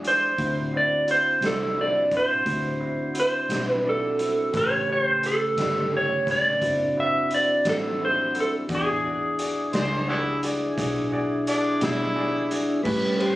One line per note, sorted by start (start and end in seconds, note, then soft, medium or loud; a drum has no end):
0.00 0.35 E2 medium
0.00 0.35 G#3 medium
0.00 0.35 D4 medium
0.00 0.35 E4 medium
0.00 0.29 F#4 soft
0.00 0.29 G#4 soft
0.00 0.30 D5 medium
0.04 0.77 C5 medium
0.04 closed hi-hat medium
0.38 1.39 D2 medium
0.38 4.50 C4 medium
0.38 4.50 D4 medium
0.38 0.64 E4 medium
0.38 0.65 F#4 medium
0.38 4.50 F#4 medium
0.38 0.65 C5 medium
0.38 kick loud
0.38 closed hi-hat medium
0.73 0.99 E4 soft
0.73 0.99 F#4 soft
0.73 0.99 C5 medium
0.77 1.10 D5 medium
1.07 1.33 E4 medium
1.07 1.34 F#4 soft
1.07 1.34 C5 medium
1.07 1.45 C5 medium
1.07 closed hi-hat medium
1.41 2.42 C2 medium
1.41 1.68 E4 soft
1.41 1.68 F#4 soft
1.41 1.68 C5 medium
1.41 snare loud
1.41 closed hi-hat medium
1.46 1.80 A4 medium
1.77 2.03 E4 soft
1.77 2.03 F#4 soft
1.77 2.04 C5 medium
1.81 2.15 D5 medium
2.11 2.38 E4 medium
2.11 2.38 F#4 soft
2.11 2.38 C5 medium
2.11 kick medium
2.11 closed hi-hat medium
2.17 3.18 C5 medium
2.45 3.47 D2 medium
2.45 2.72 E4 soft
2.45 2.72 F#4 soft
2.45 2.73 C5 medium
2.45 kick medium
2.45 closed hi-hat medium
2.80 3.06 E4 medium
2.80 3.07 F#4 soft
2.80 3.07 C5 medium
3.14 3.41 E4 medium
3.14 3.41 F#4 soft
3.14 3.41 C5 medium
3.14 closed hi-hat medium
3.20 3.69 C5 medium
3.49 4.50 B1 medium
3.49 3.75 E4 medium
3.49 3.76 F#4 soft
3.49 3.76 C5 medium
3.49 snare loud
3.49 closed hi-hat medium
3.69 3.89 B4 medium
3.84 4.10 E4 medium
3.84 4.11 F#4 soft
3.84 4.11 D5 medium
3.89 4.52 A4 medium
4.19 4.45 E4 soft
4.19 4.45 F#4 soft
4.19 4.45 C5 medium
4.19 closed hi-hat medium
4.53 5.55 A1 medium
4.53 6.60 C#3 medium
4.53 6.60 A3 medium
4.53 4.79 C#4 medium
4.53 4.80 G4 medium
4.53 6.60 G4 medium
4.53 4.80 B4 medium
4.53 kick loud
4.53 closed hi-hat medium
4.57 4.91 C#5 medium
4.88 5.14 C#4 medium
4.88 5.15 G4 soft
4.88 5.15 B4 medium
4.92 5.26 C5 medium
5.23 5.49 C#4 medium
5.23 5.49 G4 soft
5.23 5.90 A4 medium
5.23 5.50 B4 medium
5.23 closed hi-hat medium
5.56 6.58 G1 medium
5.56 5.83 C#4 medium
5.56 5.84 G4 soft
5.56 5.84 B4 medium
5.56 snare medium
5.56 closed hi-hat medium
5.92 6.18 C#4 soft
5.92 6.19 G4 medium
5.92 6.19 A4 medium
5.97 6.30 C#5 medium
6.26 6.53 C#4 medium
6.26 6.53 G4 soft
6.26 6.53 B4 medium
6.26 kick medium
6.26 snare soft
6.26 closed hi-hat medium
6.31 7.00 D5 medium
6.61 7.62 F#1 medium
6.61 8.68 C4 medium
6.61 8.68 D4 medium
6.61 6.87 E4 medium
6.61 6.88 F#4 soft
6.61 8.68 F#4 medium
6.61 6.88 C5 medium
6.61 kick medium
6.61 closed hi-hat medium
6.97 7.23 E4 medium
6.97 7.23 F#4 soft
6.97 7.23 C5 medium
6.97 7.34 E5 medium
7.31 7.57 E4 soft
7.31 7.57 F#4 soft
7.31 7.57 C5 medium
7.31 7.68 D5 medium
7.31 closed hi-hat soft
7.65 8.66 A1 medium
7.65 7.91 E4 soft
7.65 7.92 F#4 soft
7.65 7.92 C5 medium
7.65 snare loud
7.65 closed hi-hat medium
7.69 8.03 A4 medium
8.00 8.26 E4 medium
8.00 8.26 F#4 soft
8.00 8.27 C5 medium
8.05 8.38 C5 medium
8.35 8.61 E4 soft
8.35 8.61 F#4 soft
8.35 8.61 A4 medium
8.35 closed hi-hat medium
8.40 8.49 A4 medium
8.69 9.70 E2 medium
8.69 12.82 D4 medium
8.69 12.81 E4 medium
8.69 8.96 F#4 medium
8.69 12.81 G#4 medium
8.69 8.96 G#4 medium
8.69 8.96 D5 medium
8.69 kick loud
8.69 closed hi-hat medium
8.75 12.14 G#4 medium
9.04 9.30 F#4 medium
9.04 9.30 G#4 soft
9.04 9.31 D5 medium
9.39 9.65 F#4 soft
9.39 9.65 G#4 soft
9.39 9.65 D5 medium
9.39 closed hi-hat medium
9.73 10.74 C#2 medium
9.73 10.00 F#4 medium
9.73 10.00 G#4 medium
9.73 10.08 C5 medium
9.73 10.00 D5 medium
9.73 snare loud
9.73 closed hi-hat medium
10.08 10.18 B3 medium
10.08 10.15 C#4 medium
10.08 10.42 E4 medium
10.08 10.34 F#4 medium
10.08 10.34 G#4 medium
10.08 10.35 D5 medium
10.43 10.69 F#4 medium
10.43 10.69 G#4 soft
10.43 10.70 D5 medium
10.43 closed hi-hat medium
10.77 11.78 B1 medium
10.77 11.03 F#4 medium
10.77 11.04 G#4 medium
10.77 11.04 D5 medium
10.77 kick medium
10.77 closed hi-hat medium
11.12 11.38 F#4 medium
11.12 11.39 G#4 medium
11.12 11.39 D5 medium
11.47 11.81 D4 medium
11.47 11.73 F#4 medium
11.47 11.73 G#4 medium
11.47 11.73 D5 medium
11.47 closed hi-hat medium
11.80 12.82 B2 medium
11.80 12.49 E4 medium
11.80 12.07 F#4 medium
11.80 12.07 G#4 medium
11.80 12.07 D5 medium
11.80 snare loud
11.80 closed hi-hat medium
12.16 12.42 F#4 medium
12.16 12.42 G#4 medium
12.16 12.42 D5 medium
12.51 12.77 F#4 medium
12.51 12.77 G#4 medium
12.51 12.77 D5 medium
12.51 closed hi-hat medium
12.83 13.36 A2 medium
12.83 13.36 G3 soft
12.83 13.36 C#4 medium
12.83 13.11 C#4 medium
12.83 13.12 G4 medium
12.83 13.15 B4 soft
12.83 13.12 B4 medium
12.83 kick loud
12.83 crash loud
13.16 13.36 C#4 medium
13.16 13.20 B4 medium
13.16 13.36 C5 medium
13.20 13.36 G4 soft
13.20 13.36 G4 medium
13.20 13.36 B4 medium
13.20 ride medium